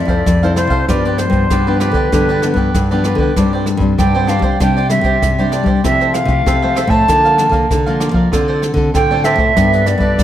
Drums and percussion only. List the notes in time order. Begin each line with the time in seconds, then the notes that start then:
0.08 kick, closed hi-hat
0.27 kick, cross-stick, closed hi-hat
0.43 closed hi-hat
0.56 cross-stick, closed hi-hat
0.70 kick, closed hi-hat
0.89 kick, cross-stick, closed hi-hat
1.05 closed hi-hat
1.18 cross-stick, closed hi-hat
1.32 kick, closed hi-hat
1.50 kick, cross-stick, closed hi-hat
1.80 cross-stick, closed hi-hat
1.94 kick, closed hi-hat
2.13 kick, cross-stick, closed hi-hat
2.29 closed hi-hat
2.42 cross-stick, closed hi-hat
2.56 kick, closed hi-hat
2.75 kick, cross-stick, closed hi-hat
2.91 closed hi-hat
3.04 cross-stick, closed hi-hat
3.18 kick
3.36 kick, cross-stick, closed hi-hat
3.66 cross-stick, closed hi-hat
3.80 kick, closed hi-hat
3.99 kick, cross-stick, closed hi-hat
4.28 cross-stick, closed hi-hat
4.42 kick, closed hi-hat
4.60 kick, cross-stick, closed hi-hat
4.77 closed hi-hat
4.90 cross-stick, closed hi-hat
5.04 kick, closed hi-hat
5.23 kick, cross-stick, closed hi-hat
5.39 closed hi-hat
5.52 cross-stick, closed hi-hat
5.66 kick, closed hi-hat
5.84 kick, cross-stick, closed hi-hat
6.01 closed hi-hat
6.14 cross-stick, closed hi-hat
6.28 kick, closed hi-hat
6.47 kick, cross-stick, closed hi-hat
6.76 cross-stick, closed hi-hat
6.90 kick, closed hi-hat
7.09 kick, cross-stick, closed hi-hat
7.25 closed hi-hat
7.38 cross-stick, closed hi-hat
7.52 kick, closed hi-hat
7.71 kick, cross-stick, closed hi-hat
7.87 closed hi-hat
8.00 cross-stick, closed hi-hat
8.14 kick
8.33 kick, cross-stick, closed hi-hat
8.62 cross-stick, closed hi-hat
8.76 kick, closed hi-hat
8.95 kick, cross-stick, closed hi-hat
9.24 cross-stick, closed hi-hat
9.38 kick, closed hi-hat
9.57 kick, cross-stick, closed hi-hat
9.73 closed hi-hat
9.86 cross-stick, closed hi-hat
10.00 kick, closed hi-hat
10.19 kick, cross-stick, closed hi-hat